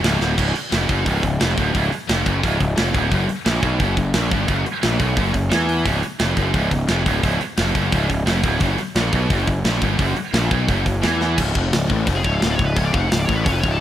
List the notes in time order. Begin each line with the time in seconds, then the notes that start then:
0.02 C#1 C#2, snare, open hi-hat
0.20 D1 D2, snare
0.38 C#1 C#2, kick, crash
0.53 muted distorted electric guitar stroke, muted picked electric bass stroke, open hi-hat
0.70 F1 F2, snare, open hi-hat
0.88 F#1 F#2, kick, open hi-hat
1.05 C#1 C#2, kick, open hi-hat
1.23 C#1 C#2, kick, open hi-hat
1.40 F1 F2, snare, open hi-hat
1.50 snare
1.56 D1 D2, kick, open hi-hat
1.73 C#1 C#2, kick, open hi-hat
1.91 muted distorted electric guitar stroke, muted picked electric bass stroke, open hi-hat
2.07 F1 F2, snare, open hi-hat
2.24 F#1 F#2, kick, open hi-hat
2.42 C#1 C#2, kick, open hi-hat
2.59 C#1 C#2, kick, open hi-hat
2.76 F1 F2, snare, open hi-hat
2.93 D1 D2, kick, open hi-hat
3.10 F#1 F#2, kick, open hi-hat
3.28 muted distorted electric guitar stroke, muted picked electric bass stroke, open hi-hat
3.45 A#1 A#2, snare, open hi-hat
3.62 B1 B2, kick, open hi-hat
3.79 F#1 F#2, kick, open hi-hat
3.97 F#1 F#2, kick, open hi-hat
4.14 A#1 A#2, snare, open hi-hat
4.31 G1 G2, kick, open hi-hat
4.48 F#1 F#2, kick, open hi-hat
4.66 muted distorted electric guitar stroke, muted picked electric bass stroke, open hi-hat
4.82 A#1 A#2, snare, open hi-hat
5.00 B1 B2, kick, open hi-hat
5.17 F#1 F#2, kick, open hi-hat
5.34 F#1 F#2, kick, open hi-hat
5.51 E2 E3, snare, open hi-hat
5.69 open hi-hat
5.85 C#1 C#2, kick, open hi-hat
6.03 muted distorted electric guitar stroke, muted picked electric bass stroke, open hi-hat
6.19 F1 F2, snare, open hi-hat
6.37 F#1 F#2, kick, open hi-hat
6.54 C#1 C#2, kick, open hi-hat
6.71 C#1 C#2, kick, open hi-hat
6.88 F1 F2, snare, open hi-hat
7.05 D1 D2, kick, open hi-hat
7.23 C#1 C#2, kick, open hi-hat
7.40 muted distorted electric guitar stroke, muted picked electric bass stroke, open hi-hat
7.57 F1 F2, snare, open hi-hat
7.75 F#1 F#2, kick, open hi-hat
7.92 C#1 C#2, kick, open hi-hat
8.10 C#1 C#2, kick, open hi-hat
8.26 F1 F2, snare, open hi-hat
8.43 D1 D2, kick, open hi-hat
8.60 F#1 F#2, kick, open hi-hat
8.78 muted picked electric bass stroke, muted distorted electric guitar stroke, open hi-hat
8.95 A#1 A#2, snare, open hi-hat
9.13 B1 B2, kick, open hi-hat
9.30 F#1 F#2, kick, open hi-hat
9.47 F#1 F#2, kick, open hi-hat
9.65 A#1 A#2, snare, open hi-hat
9.73 snare
9.82 G1 G2, kick, open hi-hat
9.99 F#1 F#2, kick, open hi-hat
10.16 muted distorted electric guitar stroke, muted picked electric bass stroke, open hi-hat
10.33 A#1 A#2, snare, open hi-hat
10.51 B1 B2, kick, open hi-hat
10.68 F#1 F#2, kick, open hi-hat
10.85 F#1 F#2, kick, open hi-hat
11.02 E2 E3, snare, open hi-hat
11.21 snare
11.36 C#1 C#2, kick, crash
11.53 F1 F2, kick
11.71 C#1 C#2, snare, open hi-hat
11.88 A1 A2, kick
12.05 F1 F2, kick, open hi-hat
12.15 G#4
12.23 C#1 C#2 C#5, kick
12.34 F5
12.40 D1 D2 F5, snare, open hi-hat
12.50 D5
12.56 C#1 C#2 C#5, kick
12.66 B4
12.75 C#1 C#2 C#5, kick, open hi-hat
12.85 D5
12.92 F1 F2 F5, kick
13.00 F#5
13.11 C#1 C#2 F5, snare, open hi-hat
13.19 D5
13.26 A1 A2 C#5, kick
13.35 B4
13.44 F1 F2 C#5, kick, open hi-hat
13.52 B4
13.61 C#1 C#2 C#5, kick
13.71 A4